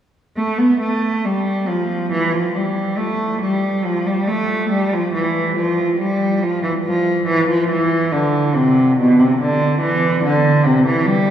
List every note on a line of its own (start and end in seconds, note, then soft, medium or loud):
0.36 0.57 A3 medium
0.58 0.80 B3 soft
0.80 1.23 A3 medium
1.25 1.68 G3 medium
1.68 2.11 F3 medium
2.12 2.32 E3 medium
2.33 2.54 F3 soft
2.55 2.98 G3 soft
2.98 3.41 A3 medium
3.41 3.83 G3 medium
3.85 4.06 F3 medium
4.06 4.28 G3 soft
4.28 4.71 A3 medium
4.70 4.91 G3 medium
4.93 5.14 F3 medium
5.14 5.55 E3 soft
5.57 5.98 F3 medium
5.99 6.41 G3 medium
6.42 6.63 F3 medium
6.63 6.71 E3 medium
6.84 7.26 F3 medium
7.27 7.48 E3 medium
7.48 7.69 F3 medium
7.69 8.12 E3 medium
8.12 8.56 D3 medium
8.55 8.98 C3 medium
8.98 9.19 B2 medium
9.18 9.40 C3 medium
9.41 9.82 D3 medium
9.81 10.23 E3 medium
10.24 10.65 D3 medium
10.66 10.87 C3 medium
10.87 11.07 E3 medium
11.06 11.30 G3 medium